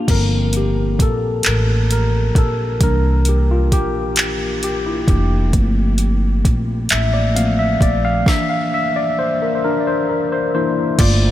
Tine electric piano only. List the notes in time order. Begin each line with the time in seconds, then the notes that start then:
Already playing: D4 G4
0.08 F3 A#3 C4 A4 A#4
0.57 G4
1.02 A4
1.47 A#4
1.92 A#4
2.38 A4
2.82 E3 A#3 D4 A#4
3.29 G4
3.51 F4
3.73 G4
4.64 G4
4.86 E4
5.09 E3 A#3 D4 G4
5.54 F3 A3 A#3 C4
6.91 E5
7.14 D5
7.35 F3 A3 A#3 C4 F5
7.59 E5
7.82 D5
8.05 F5
8.26 E3 A#3 D4 E5
8.50 F5
8.74 E5
8.96 D5
9.19 C5
9.42 A#4
9.55 C5
9.64 D4 A#4
9.80 D5
9.87 C5
10.09 A#4
10.32 C5
10.55 E3 A#3 D4 E4 C5
10.99 A3 A#3 F4 D5